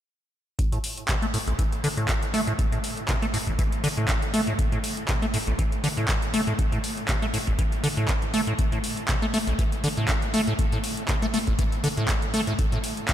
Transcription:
0.59 kick, closed hi-hat
0.72 A2, closed hi-hat
0.84 open hi-hat
0.97 closed hi-hat
1.08 C3, kick, clap, closed hi-hat
1.22 A3, closed hi-hat
1.34 A2, open hi-hat
1.47 A1, closed hi-hat
1.59 E3, kick, closed hi-hat
1.72 closed hi-hat
1.84 D3, open hi-hat
1.97 A2, closed hi-hat
2.08 kick, clap, closed hi-hat
2.23 closed hi-hat
2.34 A3, open hi-hat
2.47 A2, closed hi-hat
2.59 kick, closed hi-hat
2.72 A2, closed hi-hat
2.84 open hi-hat
2.97 closed hi-hat
3.08 C3, kick, clap, closed hi-hat
3.22 A3, closed hi-hat
3.34 A2, open hi-hat
3.47 A1, kick, closed hi-hat
3.59 E3, kick, closed hi-hat
3.72 closed hi-hat
3.84 D3, open hi-hat
3.97 A2, closed hi-hat
4.08 kick, clap, closed hi-hat
4.22 closed hi-hat
4.34 A3, open hi-hat
4.47 A2, closed hi-hat
4.59 kick, closed hi-hat
4.72 A2, closed hi-hat
4.84 open hi-hat
4.97 closed hi-hat
5.08 C3, kick, clap, closed hi-hat
5.22 A3, closed hi-hat
5.34 A2, open hi-hat
5.47 A1, closed hi-hat
5.59 E3, kick, closed hi-hat
5.72 closed hi-hat
5.84 D3, open hi-hat
5.97 A2, closed hi-hat
6.08 kick, clap, closed hi-hat
6.22 closed hi-hat
6.34 A3, open hi-hat
6.47 A2, closed hi-hat
6.59 kick, closed hi-hat
6.72 A2, closed hi-hat
6.84 open hi-hat
6.97 closed hi-hat
7.08 C3, kick, clap, closed hi-hat
7.22 A3, closed hi-hat
7.34 A2, open hi-hat
7.47 A1, kick, closed hi-hat
7.59 E3, kick, closed hi-hat
7.72 closed hi-hat
7.84 D3, open hi-hat
7.97 A2, closed hi-hat
8.08 kick, clap, closed hi-hat
8.22 closed hi-hat
8.34 A3, open hi-hat
8.47 A2, closed hi-hat
8.59 kick, closed hi-hat
8.72 A2, closed hi-hat
8.84 open hi-hat
8.97 closed hi-hat
9.08 C3, kick, clap, closed hi-hat
9.22 A3, closed hi-hat
9.34 A3, open hi-hat
9.47 A1, closed hi-hat
9.59 E3, kick, closed hi-hat
9.72 closed hi-hat
9.84 D3, open hi-hat
9.97 A2, closed hi-hat
10.08 kick, clap, closed hi-hat
10.22 closed hi-hat
10.34 A3, open hi-hat
10.47 A2, closed hi-hat
10.59 kick, closed hi-hat
10.72 A2, closed hi-hat
10.84 open hi-hat
10.97 closed hi-hat
11.08 C3, kick, clap, closed hi-hat
11.22 A3, closed hi-hat
11.34 A3, open hi-hat
11.47 A1, kick, closed hi-hat
11.59 E3, kick, closed hi-hat
11.72 closed hi-hat
11.84 D3, open hi-hat
11.97 A2, closed hi-hat
12.08 kick, clap, closed hi-hat
12.22 closed hi-hat
12.34 A3, open hi-hat
12.47 A2, closed hi-hat
12.59 kick, closed hi-hat
12.72 A2, closed hi-hat
12.84 open hi-hat
12.97 closed hi-hat
13.08 C3, kick, clap, closed hi-hat

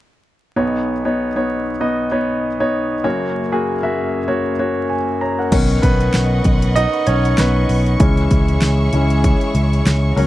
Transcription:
0.56 B1 B2 B3 D#4 C#5
1.05 B3 D#4 C#5
1.36 B3 D#4 C#5
1.80 B3 D#4 D#5
2.11 B3 D#4 C#5
2.60 B3 D#4 C#5
3.04 F#1 F#2 A#3 F#4 C#5
3.52 A#3 F#4 G#4
3.83 A#3 F#4 E5
4.28 A#3 F#4 C#5
4.59 A#3 F#4 C#5
4.90 G#5
5.21 C#5 A#5
5.39 A#4 F#5
5.52 B1 D#3 B3 C#4 B4 D#5 F#5 C#6, kick, closed hi-hat, crash
5.70 closed hi-hat
5.82 B1 B3 B4, kick, closed hi-hat
6.01 closed hi-hat
6.14 B1, snare, closed hi-hat
6.44 B1, kick, closed hi-hat
6.62 closed hi-hat
6.76 D#4 D#5, closed hi-hat
6.93 closed hi-hat
7.07 B1 C#4 C#5, closed hi-hat
7.25 closed hi-hat
7.38 B1 B3 B4, snare, closed hi-hat
7.69 B1, open hi-hat
7.86 closed hi-hat
7.99 C#2 E3 G#3 C#4 G#4 C#5 E5, kick, closed hi-hat
8.17 closed hi-hat
8.31 C#2, kick, closed hi-hat
8.48 closed hi-hat
8.62 C#2, snare, closed hi-hat
8.93 C#2 E3 G#3 C#4, closed hi-hat
9.10 closed hi-hat
9.24 kick, closed hi-hat
9.41 closed hi-hat
9.55 C#2, closed hi-hat
9.73 closed hi-hat
9.86 C#2, snare, closed hi-hat
10.16 C#2 F#3 A#3 C#4 A#4 F#5, open hi-hat

